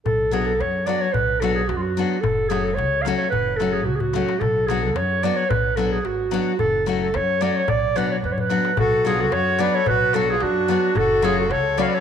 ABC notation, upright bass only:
X:1
M:2/4
L:1/8
Q:"Swing 16ths" 1/4=110
K:Bm
V:1 name="Upright bass" clef=bass
B,,,2 F,,2 | B,,,2 F,,2 | F,,,2 C,,2 | F,,,2 C,,2 |
B,,,2 F,,2 | B,,,2 ^G,,,2 | F,,,2 F,,2 | B,,,2 F,,2 |
B,,,2 F,,2 | B,,,2 F,,2 | F,,,2 C,,2 |]